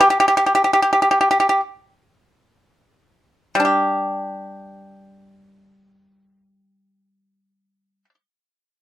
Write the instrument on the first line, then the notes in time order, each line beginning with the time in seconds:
pipa
0.01 G4
0.10 G4
0.20 G4
0.28 G4
0.37 G4
0.46 G4
0.55 G4
0.64 G4
0.73 G4
0.82 G4
0.93 G4
1.02 G4
1.11 G4
1.21 G4
1.31 G4
1.40 G4
1.49 G4
3.55 G3
3.60 D4
3.65 G4